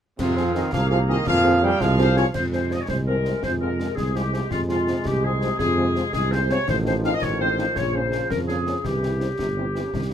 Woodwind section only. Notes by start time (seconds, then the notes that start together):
0.20 G#4 F5
0.72 G#4 F5
1.27 G#4 F5
1.81 G#4 F5
2.00 C5
2.17 C#5
2.34 C5
2.52 C5
2.72 D#5
2.81 C#5
2.89 C5
3.08 A#4
3.43 C5
3.61 A#4
3.96 G#4
4.15 G4
4.51 F4
4.69 F4
5.06 G4
5.23 G#4
5.59 G#4
6.13 G#4
6.32 C5
6.51 C#5
6.68 C5
6.86 C5
7.05 F5
7.14 D#5
7.21 C#5
7.40 C5
7.76 C#5
7.94 C5
8.30 A#4
8.48 G#4
8.84 G4